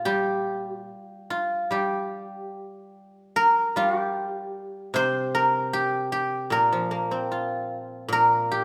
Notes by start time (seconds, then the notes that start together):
Already playing: A#2 F4 A#4
0.05 G3 G4
0.68 F#4
0.83 F4
1.30 F4
1.71 G3 G4
3.36 A#4
3.76 G3 F4
3.99 G4
4.94 C3 C5
5.35 A#4
5.73 G4
6.12 G4
6.50 A#2 A#4
6.73 F3
6.91 A#3
7.11 C4
7.32 F4
8.08 A#2
8.13 A#4
8.52 G4